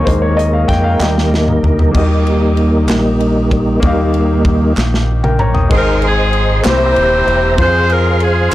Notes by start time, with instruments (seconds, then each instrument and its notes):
Already playing: tonewheel organ A#3 A#4
0.05 fingered electric bass D#2, grand piano G#3 A#3 D#4 C5, tonewheel organ G#3 D#4, kick, closed hi-hat
0.22 grand piano C#5
0.37 grand piano D#5, closed hi-hat
0.54 grand piano F5
0.68 fingered electric bass F2, grand piano G5, kick, snare, closed hi-hat
0.84 grand piano F5
1.00 fingered electric bass D#2, grand piano G3 A#3 D#4 G5, tonewheel organ G3 D#4, snare, clap
1.18 snare
1.34 snare
1.48 mid tom
1.63 fingered electric bass D2, floor tom
1.79 floor tom
1.91 fingered electric bass D#2, grand piano D#3 A#3 D#4 F#4, tonewheel organ G3 A#3, kick, crash
1.96 tonewheel organ D#4, grand piano D#5
2.02 grand piano G4
2.27 ride
2.57 ride
2.88 fingered electric bass A#1, snare, clap, ride
3.20 ride
3.51 tonewheel organ G3 A#3 D#4, kick, ride
3.80 fingered electric bass D#2, grand piano D#3 A#3 D#4 G4, tonewheel organ G3 A#3, kick, ride
3.84 tonewheel organ D#4, grand piano F5
4.14 ride
4.45 kick, ride
4.77 fingered electric bass A#1, snare, clap
4.94 snare
5.24 grand piano A#4 G5, mid tom
5.39 grand piano C#5 A#5, mid tom
5.54 grand piano G5 D#6, floor tom
5.68 fingered electric bass G#1, grand piano G#2 D#4 G#4 A#4, kick, crash
5.72 saxophone section D#4, tonewheel organ G#4 C5 D#5 C6
5.76 saxophone section A#4, grand piano C5
6.02 saxophone section C4 D#4, ride
6.07 saxophone section G#4
6.33 ride
6.63 fingered electric bass C2, grand piano C3 A#3 C4 E4 G4 C5, tonewheel organ G4 C5 E5 A#5, snare, clap, ride
6.68 saxophone section E4 G4 C5
6.96 fingered electric bass D#1, ride
7.27 fingered electric bass E1, ride
7.56 fingered electric bass F2, grand piano C4 F4, kick, ride
7.60 saxophone section F4 G#4 C5, tonewheel organ G#4 F5 C6, grand piano G#4
7.90 saxophone section A#4, ride
8.20 saxophone section G#4, ride